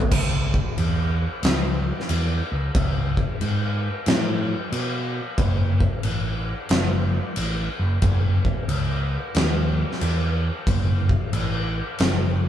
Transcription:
0.00 floor tom
0.11 C#2, kick, crash
0.54 kick
0.78 E2, crash
1.43 C#2, snare, crash
2.00 snare
2.09 E2, crash
2.52 C#2
2.75 C#2, kick, crash
3.17 kick
3.41 G#2, crash
4.06 A2, snare, crash
4.72 B2, crash
5.38 F#1, kick, crash
5.80 kick
6.03 A1, crash
6.69 F#1, snare, crash
7.36 A1, crash
7.79 F#1
8.02 F#1, kick, crash
8.45 kick
8.68 C#2, crash
9.35 D#2, snare, crash
9.92 snare
10.01 E2, crash
10.67 F#1, kick, crash
11.09 kick
11.33 A1, crash
11.98 F#1, snare, crash

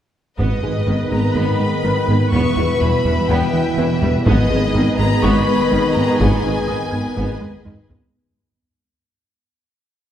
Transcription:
0.38 G#1 G#2 D#3 G#3 B3 D#4 B4 D#5, taiko
0.62 G#1 G#2 G#3 G#4 B4
0.87 G#1 G#2 D#3 B3
1.11 G#1 G#2 G#3 B3 G#4 A#5 A#6
1.35 G#1 G#2 G#3 B3 B5
1.60 G#3
1.84 G#1 G#2 D#3 G#3 D#4
2.08 G#1 G#2 G#3 B3
2.32 E1 E2 B2 E3 B3 E4 E5 C#6
2.57 E1 E2 G3 E4
2.81 E1 E2 E3 G3 B5
3.05 E1 E2 G3
3.29 E1 E2 E3 B3 G5 B5
3.53 E3
3.78 E1 E2 E3 B3
4.02 E1 E2 G3
4.26 G#1 G#2 D#3 G#3 B3 D#4 G#4 B4 D#5, taiko
4.50 G#1 G#2 G#3 G#4
4.74 G#1 G#2 D#3 B3
4.98 G#1 G#2 G#3 B3 A#5
5.22 G#1 G#2 G#3 B3 B5 C#6, taiko
5.47 G#3
5.71 G#1 G#2 D#3 G#3 D#4
5.96 G#1 G#2 G#3 B3 A#5
6.20 G#1 G#2 G#3 B3 G#5, taiko
6.44 G#1 G#2 G#3 G#4
6.68 G#1 G#2 D#3 B3 D#6
6.91 G#1 G#2 G#3 B3 G#6
7.17 G#1 G#2 G#3 B3, taiko
7.41 G#3, taiko low-mid
7.65 G#1 G#2 D#3 G#3 D#4, taiko low-mid
7.89 G#1 G#2 G#3 B3, taiko low

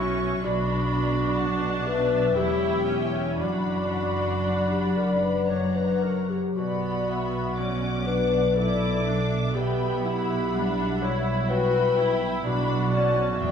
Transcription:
Already playing: B1 B2 F#3 F#4 E5
0.00 C#4 F#4 C#6
0.45 B1 B2 D4 F#4 D5 B5
0.91 F#4 D5
1.38 F#3 F#5 A5
1.87 F#4 B4 E5
2.36 E1 E2 E4 G4 C#5 G5
2.88 C#4 E4 C#5
3.40 F#1 F#2 D4 F#4 D5 F#5 B5
3.94 D4
4.46 F#3
4.71 G4
4.97 D4 A#4
5.22 B4
5.49 F#2 C#5 F#5 A#5
5.76 B4
6.02 F#4 A#4 C#5
6.29 G4
6.57 B1 B2 B3 F#4 D5 F#5 B5
7.08 F#4 E5
7.58 F#3 C#4 D5 F#5 D6
8.06 D4 F#4 B4 D5
8.56 E4 A4 D5 D6
9.06 D4 F#4 E5
9.55 B2 B3 G4 G5 B5
10.04 E4 F#5
10.53 G3 D4 E5
11.02 E4 C#5
11.50 F#4 B4 E5 G5 B5
11.98 E4
12.45 B1 B2 D4 F#4 D5 F#5 B5
12.92 C#4 F#4 D5 A5
13.37 E1 E2 B3 D5 E5
13.43 G5

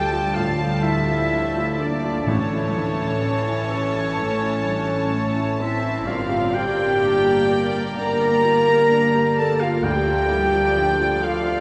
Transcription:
Already playing: D2 F3 G3 D4 E4 F4 G4 A4 G5 A5
0.11 F4
0.34 A2 F4 F5
0.58 F4
0.81 E4 E5
0.85 E4
1.07 F4
1.31 A3 D4
1.57 F4
1.78 A#3 D4 A4 D5
2.04 F4
2.24 A1 A2 E3 A3 C#4 A4 C#5 A5
2.28 C#5
2.53 E4
2.75 E3 D4
3.00 E4
3.24 C#4
3.48 E4
3.71 A4
3.94 E4
4.17 E3 A3
4.42 E4
4.65 G3 D4
4.88 E4
5.12 A3 C#4
5.36 E4
5.59 C4 E4 A4 E5
5.83 E4
6.06 G1 G2 G3 F4 A#4 D5 F5
6.29 G4
6.53 F4 G4 G5
6.77 G4
7.01 A#3 D4
7.26 G4
7.48 A#3 A#4
7.72 G4
7.96 D3 A#4 A#5
8.20 G4
8.44 F4
8.68 G4
8.91 D4
9.15 G4
9.37 A4 A#4 A5
9.60 F4 G4 F5
9.83 D2 F3 A3 G4 A4 D5 G5
10.06 F4
10.29 G3 E4
10.53 F4
10.76 F3 D4
11.00 F4
11.23 F4 A4 F5
11.47 F4

